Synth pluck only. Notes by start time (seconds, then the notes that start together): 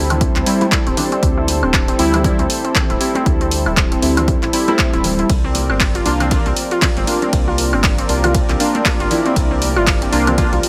0.10 C4
0.36 C4
0.61 E4
0.87 C4
1.12 C4
1.38 E4
1.63 C4
1.88 C4
2.14 E4
2.39 C4
2.65 C4
2.90 E4
3.15 C4
3.41 C4
3.66 E4
3.92 C4
4.17 C4
4.43 E4
4.68 A4
4.93 E4
5.19 E4
5.45 C4
5.70 C4
5.95 F4
6.21 C4
6.46 C4
6.72 F4
6.97 C4
7.22 C4
7.48 F4
7.73 C4
7.99 C4
8.24 F4
8.49 C4
8.75 C4
9.00 F4
9.26 C4
9.51 C4
9.76 F4
10.02 C4
10.27 C4
10.53 F4